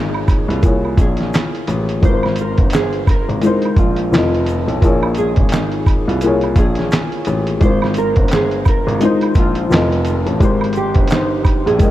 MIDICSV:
0, 0, Header, 1, 5, 480
1, 0, Start_track
1, 0, Tempo, 697674
1, 1395, Time_signature, 4, 2, 24, 8
1, 8193, End_track
2, 0, Start_track
2, 0, Title_t, "Nylon-string guitar"
2, 0, Program_c, 0, 24
2, 0, Note_on_c, 0, 63, 76
2, 362, Note_off_c, 0, 63, 0
2, 362, Note_on_c, 0, 65, 78
2, 669, Note_off_c, 0, 65, 0
2, 695, Note_on_c, 0, 68, 75
2, 902, Note_off_c, 0, 68, 0
2, 1410, Note_on_c, 0, 72, 105
2, 1619, Note_off_c, 0, 72, 0
2, 1660, Note_on_c, 0, 70, 84
2, 1865, Note_off_c, 0, 70, 0
2, 1889, Note_on_c, 0, 68, 85
2, 2098, Note_off_c, 0, 68, 0
2, 2136, Note_on_c, 0, 70, 77
2, 2343, Note_off_c, 0, 70, 0
2, 2368, Note_on_c, 0, 63, 84
2, 2578, Note_off_c, 0, 63, 0
2, 2609, Note_on_c, 0, 65, 72
2, 2960, Note_off_c, 0, 65, 0
2, 3565, Note_on_c, 0, 68, 76
2, 3776, Note_off_c, 0, 68, 0
2, 3812, Note_on_c, 0, 63, 76
2, 4162, Note_off_c, 0, 63, 0
2, 4189, Note_on_c, 0, 65, 77
2, 4501, Note_off_c, 0, 65, 0
2, 4528, Note_on_c, 0, 68, 79
2, 4738, Note_off_c, 0, 68, 0
2, 5244, Note_on_c, 0, 72, 109
2, 5456, Note_off_c, 0, 72, 0
2, 5490, Note_on_c, 0, 70, 80
2, 5699, Note_off_c, 0, 70, 0
2, 5740, Note_on_c, 0, 68, 91
2, 5945, Note_off_c, 0, 68, 0
2, 5978, Note_on_c, 0, 70, 79
2, 6183, Note_off_c, 0, 70, 0
2, 6209, Note_on_c, 0, 63, 99
2, 6419, Note_off_c, 0, 63, 0
2, 6460, Note_on_c, 0, 65, 83
2, 6806, Note_off_c, 0, 65, 0
2, 7412, Note_on_c, 0, 67, 72
2, 7620, Note_off_c, 0, 67, 0
2, 7653, Note_on_c, 0, 63, 83
2, 8002, Note_off_c, 0, 63, 0
2, 8028, Note_on_c, 0, 68, 78
2, 8193, Note_off_c, 0, 68, 0
2, 8193, End_track
3, 0, Start_track
3, 0, Title_t, "Upright piano"
3, 0, Program_c, 1, 0
3, 0, Control_c, 1, 64, 127
3, 0, Note_on_c, 1, 58, 84
3, 0, Note_on_c, 1, 65, 72
3, 0, Note_on_c, 1, 68, 72
3, 0, Note_on_c, 1, 73, 90
3, 168, Note_off_c, 1, 58, 0
3, 173, Note_off_c, 1, 65, 0
3, 178, Note_off_c, 1, 68, 0
3, 185, Note_off_c, 1, 73, 0
3, 423, Note_on_c, 1, 58, 75
3, 433, Note_on_c, 1, 65, 69
3, 450, Note_on_c, 1, 68, 67
3, 456, Note_on_c, 1, 73, 76
3, 1124, Note_off_c, 1, 58, 0
3, 1129, Note_off_c, 1, 65, 0
3, 1138, Note_off_c, 1, 68, 0
3, 1141, Note_off_c, 1, 73, 0
3, 1388, Note_on_c, 1, 56, 67
3, 1401, Note_on_c, 1, 65, 70
3, 1404, Control_c, 1, 64, 0
3, 1413, Note_on_c, 1, 70, 60
3, 1423, Note_on_c, 1, 71, 61
3, 1461, Note_off_c, 1, 71, 0
3, 1469, Note_on_c, 1, 72, 84
3, 1518, Control_c, 1, 64, 127
3, 2087, Note_off_c, 1, 56, 0
3, 2093, Note_off_c, 1, 65, 0
3, 2099, Note_off_c, 1, 70, 0
3, 2127, Note_off_c, 1, 72, 0
3, 2348, Note_on_c, 1, 56, 83
3, 2360, Note_on_c, 1, 65, 69
3, 2374, Note_on_c, 1, 70, 74
3, 2383, Note_on_c, 1, 72, 86
3, 2832, Note_off_c, 1, 56, 0
3, 2836, Note_off_c, 1, 65, 0
3, 2836, Note_on_c, 1, 53, 85
3, 2843, Control_c, 1, 64, 0
3, 2845, Note_off_c, 1, 70, 0
3, 2846, Note_on_c, 1, 65, 80
3, 2849, Note_off_c, 1, 72, 0
3, 2858, Note_on_c, 1, 69, 74
3, 2870, Note_on_c, 1, 75, 84
3, 2973, Control_c, 1, 64, 127
3, 3236, Note_off_c, 1, 53, 0
3, 3241, Note_off_c, 1, 65, 0
3, 3247, Note_off_c, 1, 69, 0
3, 3252, Note_off_c, 1, 75, 0
3, 3315, Note_on_c, 1, 58, 98
3, 3323, Control_c, 1, 64, 0
3, 3323, Note_on_c, 1, 65, 82
3, 3335, Note_on_c, 1, 68, 83
3, 3344, Note_on_c, 1, 73, 92
3, 3445, Control_c, 1, 64, 127
3, 4010, Note_off_c, 1, 58, 0
3, 4014, Note_off_c, 1, 65, 0
3, 4020, Note_off_c, 1, 68, 0
3, 4025, Note_off_c, 1, 73, 0
3, 4281, Note_on_c, 1, 58, 88
3, 4292, Note_on_c, 1, 65, 77
3, 4305, Note_on_c, 1, 68, 74
3, 4315, Note_on_c, 1, 73, 85
3, 4973, Note_off_c, 1, 58, 0
3, 4979, Note_off_c, 1, 65, 0
3, 4985, Note_off_c, 1, 68, 0
3, 4990, Note_off_c, 1, 73, 0
3, 5232, Note_on_c, 1, 56, 80
3, 5243, Control_c, 1, 64, 0
3, 5243, Note_on_c, 1, 65, 67
3, 5254, Note_on_c, 1, 70, 63
3, 5264, Note_on_c, 1, 72, 82
3, 5360, Control_c, 1, 64, 127
3, 5929, Note_off_c, 1, 56, 0
3, 5934, Note_off_c, 1, 65, 0
3, 5940, Note_off_c, 1, 70, 0
3, 5945, Note_off_c, 1, 72, 0
3, 6194, Note_on_c, 1, 56, 80
3, 6205, Note_on_c, 1, 65, 74
3, 6216, Note_on_c, 1, 70, 64
3, 6226, Note_on_c, 1, 72, 93
3, 6667, Note_off_c, 1, 65, 0
3, 6667, Note_on_c, 1, 53, 83
3, 6674, Note_off_c, 1, 56, 0
3, 6677, Note_on_c, 1, 65, 84
3, 6682, Control_c, 1, 64, 0
3, 6686, Note_off_c, 1, 70, 0
3, 6689, Note_on_c, 1, 69, 79
3, 6690, Note_off_c, 1, 72, 0
3, 6702, Note_on_c, 1, 75, 77
3, 6791, Control_c, 1, 64, 127
3, 7071, Note_off_c, 1, 53, 0
3, 7076, Note_off_c, 1, 65, 0
3, 7082, Note_off_c, 1, 69, 0
3, 7088, Note_off_c, 1, 75, 0
3, 7155, Note_on_c, 1, 56, 95
3, 7164, Control_c, 1, 64, 0
3, 7164, Note_on_c, 1, 67, 89
3, 7176, Note_on_c, 1, 70, 81
3, 7186, Note_on_c, 1, 72, 98
3, 7289, Control_c, 1, 64, 127
3, 7850, Note_off_c, 1, 56, 0
3, 7855, Note_off_c, 1, 67, 0
3, 7861, Note_off_c, 1, 70, 0
3, 7866, Note_off_c, 1, 72, 0
3, 8107, Note_on_c, 1, 56, 84
3, 8118, Note_on_c, 1, 79, 73
3, 8127, Note_on_c, 1, 70, 80
3, 8141, Note_on_c, 1, 75, 84
3, 8193, Note_off_c, 1, 56, 0
3, 8193, Note_off_c, 1, 70, 0
3, 8193, Note_off_c, 1, 75, 0
3, 8193, Note_off_c, 1, 79, 0
3, 8193, End_track
4, 0, Start_track
4, 0, Title_t, "Grand piano"
4, 0, Program_c, 2, 0
4, 0, Note_on_c, 2, 32, 83
4, 308, Note_off_c, 2, 32, 0
4, 332, Note_on_c, 2, 36, 88
4, 654, Note_off_c, 2, 36, 0
4, 670, Note_on_c, 2, 34, 85
4, 899, Note_off_c, 2, 34, 0
4, 1157, Note_on_c, 2, 33, 93
4, 1382, Note_off_c, 2, 33, 0
4, 1399, Note_on_c, 2, 32, 101
4, 1756, Note_off_c, 2, 32, 0
4, 1776, Note_on_c, 2, 31, 83
4, 2229, Note_off_c, 2, 31, 0
4, 2263, Note_on_c, 2, 32, 90
4, 2353, Note_off_c, 2, 32, 0
4, 2591, Note_on_c, 2, 34, 83
4, 2833, Note_off_c, 2, 34, 0
4, 2836, Note_on_c, 2, 29, 101
4, 3194, Note_off_c, 2, 29, 0
4, 3216, Note_on_c, 2, 35, 83
4, 3310, Note_off_c, 2, 35, 0
4, 3319, Note_on_c, 2, 34, 104
4, 3676, Note_off_c, 2, 34, 0
4, 3698, Note_on_c, 2, 32, 80
4, 4150, Note_off_c, 2, 32, 0
4, 4180, Note_on_c, 2, 36, 86
4, 4498, Note_off_c, 2, 36, 0
4, 4514, Note_on_c, 2, 34, 86
4, 4741, Note_off_c, 2, 34, 0
4, 5002, Note_on_c, 2, 33, 95
4, 5225, Note_off_c, 2, 33, 0
4, 5236, Note_on_c, 2, 32, 101
4, 5594, Note_off_c, 2, 32, 0
4, 5620, Note_on_c, 2, 31, 94
4, 6070, Note_off_c, 2, 31, 0
4, 6102, Note_on_c, 2, 32, 103
4, 6193, Note_off_c, 2, 32, 0
4, 6436, Note_on_c, 2, 34, 89
4, 6662, Note_off_c, 2, 34, 0
4, 6682, Note_on_c, 2, 29, 114
4, 7037, Note_off_c, 2, 29, 0
4, 7062, Note_on_c, 2, 33, 88
4, 7153, Note_off_c, 2, 33, 0
4, 7160, Note_on_c, 2, 32, 105
4, 7516, Note_off_c, 2, 32, 0
4, 7539, Note_on_c, 2, 31, 91
4, 7990, Note_off_c, 2, 31, 0
4, 8023, Note_on_c, 2, 34, 89
4, 8193, Note_off_c, 2, 34, 0
4, 8193, End_track
5, 0, Start_track
5, 0, Title_t, "Drums"
5, 99, Note_on_c, 9, 76, 64
5, 168, Note_off_c, 9, 76, 0
5, 192, Note_on_c, 9, 36, 99
5, 192, Note_on_c, 9, 76, 66
5, 192, Note_on_c, 9, 82, 47
5, 202, Note_on_c, 9, 42, 69
5, 260, Note_off_c, 9, 76, 0
5, 260, Note_off_c, 9, 82, 0
5, 261, Note_off_c, 9, 36, 0
5, 271, Note_off_c, 9, 42, 0
5, 346, Note_on_c, 9, 42, 53
5, 414, Note_off_c, 9, 42, 0
5, 431, Note_on_c, 9, 42, 78
5, 432, Note_on_c, 9, 82, 64
5, 433, Note_on_c, 9, 36, 95
5, 500, Note_off_c, 9, 42, 0
5, 500, Note_off_c, 9, 82, 0
5, 502, Note_off_c, 9, 36, 0
5, 583, Note_on_c, 9, 76, 45
5, 652, Note_off_c, 9, 76, 0
5, 670, Note_on_c, 9, 36, 99
5, 672, Note_on_c, 9, 42, 62
5, 673, Note_on_c, 9, 82, 51
5, 739, Note_off_c, 9, 36, 0
5, 740, Note_off_c, 9, 42, 0
5, 742, Note_off_c, 9, 82, 0
5, 803, Note_on_c, 9, 42, 49
5, 829, Note_on_c, 9, 38, 37
5, 872, Note_off_c, 9, 42, 0
5, 898, Note_off_c, 9, 38, 0
5, 920, Note_on_c, 9, 82, 70
5, 929, Note_on_c, 9, 39, 93
5, 932, Note_on_c, 9, 38, 118
5, 935, Note_on_c, 9, 42, 89
5, 989, Note_off_c, 9, 82, 0
5, 997, Note_off_c, 9, 39, 0
5, 1001, Note_off_c, 9, 38, 0
5, 1004, Note_off_c, 9, 42, 0
5, 1065, Note_on_c, 9, 42, 39
5, 1134, Note_off_c, 9, 42, 0
5, 1152, Note_on_c, 9, 42, 70
5, 1162, Note_on_c, 9, 82, 40
5, 1221, Note_off_c, 9, 42, 0
5, 1231, Note_off_c, 9, 82, 0
5, 1299, Note_on_c, 9, 42, 50
5, 1368, Note_off_c, 9, 42, 0
5, 1394, Note_on_c, 9, 36, 116
5, 1395, Note_on_c, 9, 42, 68
5, 1403, Note_on_c, 9, 82, 56
5, 1463, Note_off_c, 9, 36, 0
5, 1463, Note_off_c, 9, 42, 0
5, 1471, Note_off_c, 9, 82, 0
5, 1535, Note_on_c, 9, 76, 71
5, 1554, Note_on_c, 9, 38, 39
5, 1604, Note_off_c, 9, 76, 0
5, 1622, Note_on_c, 9, 42, 73
5, 1623, Note_off_c, 9, 38, 0
5, 1637, Note_on_c, 9, 82, 54
5, 1691, Note_off_c, 9, 42, 0
5, 1706, Note_off_c, 9, 82, 0
5, 1772, Note_on_c, 9, 42, 55
5, 1776, Note_on_c, 9, 36, 95
5, 1841, Note_off_c, 9, 42, 0
5, 1845, Note_off_c, 9, 36, 0
5, 1857, Note_on_c, 9, 42, 82
5, 1878, Note_on_c, 9, 82, 83
5, 1886, Note_on_c, 9, 39, 100
5, 1890, Note_on_c, 9, 38, 116
5, 1926, Note_off_c, 9, 42, 0
5, 1947, Note_off_c, 9, 82, 0
5, 1955, Note_off_c, 9, 39, 0
5, 1958, Note_off_c, 9, 38, 0
5, 2014, Note_on_c, 9, 42, 37
5, 2082, Note_off_c, 9, 42, 0
5, 2114, Note_on_c, 9, 36, 97
5, 2115, Note_on_c, 9, 76, 67
5, 2115, Note_on_c, 9, 82, 50
5, 2126, Note_on_c, 9, 42, 71
5, 2183, Note_off_c, 9, 36, 0
5, 2184, Note_off_c, 9, 76, 0
5, 2184, Note_off_c, 9, 82, 0
5, 2195, Note_off_c, 9, 42, 0
5, 2266, Note_on_c, 9, 42, 53
5, 2335, Note_off_c, 9, 42, 0
5, 2350, Note_on_c, 9, 42, 81
5, 2360, Note_on_c, 9, 82, 70
5, 2419, Note_off_c, 9, 42, 0
5, 2429, Note_off_c, 9, 82, 0
5, 2490, Note_on_c, 9, 42, 35
5, 2514, Note_on_c, 9, 76, 50
5, 2559, Note_off_c, 9, 42, 0
5, 2582, Note_off_c, 9, 76, 0
5, 2590, Note_on_c, 9, 36, 95
5, 2591, Note_on_c, 9, 42, 65
5, 2597, Note_on_c, 9, 82, 55
5, 2659, Note_off_c, 9, 36, 0
5, 2659, Note_off_c, 9, 42, 0
5, 2666, Note_off_c, 9, 82, 0
5, 2728, Note_on_c, 9, 42, 53
5, 2796, Note_off_c, 9, 42, 0
5, 2842, Note_on_c, 9, 82, 67
5, 2853, Note_on_c, 9, 39, 95
5, 2857, Note_on_c, 9, 38, 121
5, 2860, Note_on_c, 9, 42, 88
5, 2911, Note_off_c, 9, 82, 0
5, 2922, Note_off_c, 9, 39, 0
5, 2926, Note_off_c, 9, 38, 0
5, 2929, Note_off_c, 9, 42, 0
5, 2989, Note_on_c, 9, 42, 38
5, 3058, Note_off_c, 9, 42, 0
5, 3072, Note_on_c, 9, 42, 66
5, 3086, Note_on_c, 9, 82, 42
5, 3141, Note_off_c, 9, 42, 0
5, 3154, Note_off_c, 9, 82, 0
5, 3223, Note_on_c, 9, 42, 49
5, 3291, Note_off_c, 9, 42, 0
5, 3317, Note_on_c, 9, 36, 112
5, 3318, Note_on_c, 9, 42, 71
5, 3326, Note_on_c, 9, 82, 59
5, 3385, Note_off_c, 9, 36, 0
5, 3387, Note_off_c, 9, 42, 0
5, 3395, Note_off_c, 9, 82, 0
5, 3459, Note_on_c, 9, 76, 73
5, 3528, Note_off_c, 9, 76, 0
5, 3541, Note_on_c, 9, 42, 65
5, 3558, Note_on_c, 9, 82, 47
5, 3609, Note_off_c, 9, 42, 0
5, 3627, Note_off_c, 9, 82, 0
5, 3689, Note_on_c, 9, 42, 52
5, 3696, Note_on_c, 9, 36, 90
5, 3757, Note_off_c, 9, 42, 0
5, 3765, Note_off_c, 9, 36, 0
5, 3777, Note_on_c, 9, 42, 83
5, 3800, Note_on_c, 9, 82, 81
5, 3805, Note_on_c, 9, 39, 88
5, 3809, Note_on_c, 9, 38, 115
5, 3846, Note_off_c, 9, 42, 0
5, 3869, Note_off_c, 9, 82, 0
5, 3874, Note_off_c, 9, 39, 0
5, 3878, Note_off_c, 9, 38, 0
5, 3933, Note_on_c, 9, 42, 38
5, 4002, Note_off_c, 9, 42, 0
5, 4034, Note_on_c, 9, 36, 92
5, 4036, Note_on_c, 9, 76, 66
5, 4036, Note_on_c, 9, 82, 45
5, 4046, Note_on_c, 9, 42, 67
5, 4103, Note_off_c, 9, 36, 0
5, 4105, Note_off_c, 9, 76, 0
5, 4105, Note_off_c, 9, 82, 0
5, 4114, Note_off_c, 9, 42, 0
5, 4190, Note_on_c, 9, 42, 50
5, 4259, Note_off_c, 9, 42, 0
5, 4273, Note_on_c, 9, 42, 85
5, 4273, Note_on_c, 9, 82, 68
5, 4342, Note_off_c, 9, 42, 0
5, 4342, Note_off_c, 9, 82, 0
5, 4412, Note_on_c, 9, 42, 36
5, 4427, Note_on_c, 9, 76, 48
5, 4481, Note_off_c, 9, 42, 0
5, 4496, Note_off_c, 9, 76, 0
5, 4511, Note_on_c, 9, 42, 65
5, 4512, Note_on_c, 9, 36, 86
5, 4512, Note_on_c, 9, 82, 53
5, 4580, Note_off_c, 9, 42, 0
5, 4580, Note_off_c, 9, 82, 0
5, 4581, Note_off_c, 9, 36, 0
5, 4646, Note_on_c, 9, 42, 46
5, 4672, Note_on_c, 9, 38, 37
5, 4715, Note_off_c, 9, 42, 0
5, 4741, Note_off_c, 9, 38, 0
5, 4756, Note_on_c, 9, 82, 65
5, 4767, Note_on_c, 9, 39, 95
5, 4771, Note_on_c, 9, 38, 116
5, 4774, Note_on_c, 9, 42, 83
5, 4825, Note_off_c, 9, 82, 0
5, 4835, Note_off_c, 9, 39, 0
5, 4839, Note_off_c, 9, 38, 0
5, 4842, Note_off_c, 9, 42, 0
5, 4900, Note_on_c, 9, 42, 35
5, 4968, Note_off_c, 9, 42, 0
5, 4987, Note_on_c, 9, 42, 70
5, 5001, Note_on_c, 9, 82, 37
5, 5055, Note_off_c, 9, 42, 0
5, 5070, Note_off_c, 9, 82, 0
5, 5138, Note_on_c, 9, 42, 51
5, 5207, Note_off_c, 9, 42, 0
5, 5233, Note_on_c, 9, 42, 66
5, 5236, Note_on_c, 9, 36, 106
5, 5244, Note_on_c, 9, 82, 61
5, 5302, Note_off_c, 9, 42, 0
5, 5305, Note_off_c, 9, 36, 0
5, 5313, Note_off_c, 9, 82, 0
5, 5379, Note_on_c, 9, 76, 74
5, 5393, Note_on_c, 9, 38, 39
5, 5448, Note_off_c, 9, 76, 0
5, 5461, Note_off_c, 9, 38, 0
5, 5463, Note_on_c, 9, 42, 69
5, 5478, Note_on_c, 9, 82, 53
5, 5532, Note_off_c, 9, 42, 0
5, 5547, Note_off_c, 9, 82, 0
5, 5612, Note_on_c, 9, 42, 51
5, 5618, Note_on_c, 9, 36, 92
5, 5681, Note_off_c, 9, 42, 0
5, 5687, Note_off_c, 9, 36, 0
5, 5697, Note_on_c, 9, 42, 82
5, 5721, Note_on_c, 9, 82, 83
5, 5726, Note_on_c, 9, 39, 87
5, 5730, Note_on_c, 9, 38, 116
5, 5766, Note_off_c, 9, 42, 0
5, 5790, Note_off_c, 9, 82, 0
5, 5794, Note_off_c, 9, 39, 0
5, 5798, Note_off_c, 9, 38, 0
5, 5857, Note_on_c, 9, 42, 40
5, 5926, Note_off_c, 9, 42, 0
5, 5953, Note_on_c, 9, 76, 71
5, 5953, Note_on_c, 9, 82, 54
5, 5957, Note_on_c, 9, 36, 90
5, 5971, Note_on_c, 9, 42, 73
5, 6022, Note_off_c, 9, 76, 0
5, 6022, Note_off_c, 9, 82, 0
5, 6026, Note_off_c, 9, 36, 0
5, 6039, Note_off_c, 9, 42, 0
5, 6112, Note_on_c, 9, 42, 53
5, 6181, Note_off_c, 9, 42, 0
5, 6197, Note_on_c, 9, 42, 85
5, 6198, Note_on_c, 9, 82, 69
5, 6266, Note_off_c, 9, 42, 0
5, 6267, Note_off_c, 9, 82, 0
5, 6338, Note_on_c, 9, 42, 33
5, 6348, Note_on_c, 9, 76, 55
5, 6407, Note_off_c, 9, 42, 0
5, 6417, Note_off_c, 9, 76, 0
5, 6431, Note_on_c, 9, 82, 51
5, 6434, Note_on_c, 9, 36, 96
5, 6436, Note_on_c, 9, 42, 73
5, 6499, Note_off_c, 9, 82, 0
5, 6503, Note_off_c, 9, 36, 0
5, 6505, Note_off_c, 9, 42, 0
5, 6572, Note_on_c, 9, 42, 48
5, 6641, Note_off_c, 9, 42, 0
5, 6680, Note_on_c, 9, 82, 68
5, 6695, Note_on_c, 9, 39, 94
5, 6699, Note_on_c, 9, 38, 127
5, 6702, Note_on_c, 9, 42, 85
5, 6749, Note_off_c, 9, 82, 0
5, 6764, Note_off_c, 9, 39, 0
5, 6768, Note_off_c, 9, 38, 0
5, 6771, Note_off_c, 9, 42, 0
5, 6827, Note_on_c, 9, 42, 41
5, 6896, Note_off_c, 9, 42, 0
5, 6912, Note_on_c, 9, 42, 64
5, 6924, Note_on_c, 9, 82, 44
5, 6981, Note_off_c, 9, 42, 0
5, 6993, Note_off_c, 9, 82, 0
5, 7063, Note_on_c, 9, 42, 54
5, 7131, Note_off_c, 9, 42, 0
5, 7158, Note_on_c, 9, 36, 107
5, 7159, Note_on_c, 9, 42, 65
5, 7167, Note_on_c, 9, 82, 61
5, 7227, Note_off_c, 9, 36, 0
5, 7228, Note_off_c, 9, 42, 0
5, 7236, Note_off_c, 9, 82, 0
5, 7300, Note_on_c, 9, 76, 73
5, 7320, Note_on_c, 9, 42, 35
5, 7369, Note_off_c, 9, 76, 0
5, 7381, Note_off_c, 9, 42, 0
5, 7381, Note_on_c, 9, 42, 65
5, 7399, Note_on_c, 9, 82, 52
5, 7450, Note_off_c, 9, 42, 0
5, 7468, Note_off_c, 9, 82, 0
5, 7531, Note_on_c, 9, 42, 57
5, 7538, Note_on_c, 9, 36, 96
5, 7600, Note_off_c, 9, 42, 0
5, 7607, Note_off_c, 9, 36, 0
5, 7620, Note_on_c, 9, 42, 83
5, 7639, Note_on_c, 9, 82, 80
5, 7649, Note_on_c, 9, 39, 94
5, 7652, Note_on_c, 9, 38, 124
5, 7689, Note_off_c, 9, 42, 0
5, 7708, Note_off_c, 9, 82, 0
5, 7717, Note_off_c, 9, 39, 0
5, 7721, Note_off_c, 9, 38, 0
5, 7875, Note_on_c, 9, 76, 70
5, 7875, Note_on_c, 9, 82, 48
5, 7876, Note_on_c, 9, 36, 89
5, 7887, Note_on_c, 9, 42, 72
5, 7944, Note_off_c, 9, 76, 0
5, 7944, Note_off_c, 9, 82, 0
5, 7945, Note_off_c, 9, 36, 0
5, 7956, Note_off_c, 9, 42, 0
5, 8030, Note_on_c, 9, 42, 54
5, 8099, Note_off_c, 9, 42, 0
5, 8114, Note_on_c, 9, 42, 79
5, 8116, Note_on_c, 9, 82, 66
5, 8118, Note_on_c, 9, 36, 101
5, 8183, Note_off_c, 9, 42, 0
5, 8185, Note_off_c, 9, 82, 0
5, 8186, Note_off_c, 9, 36, 0
5, 8193, End_track
0, 0, End_of_file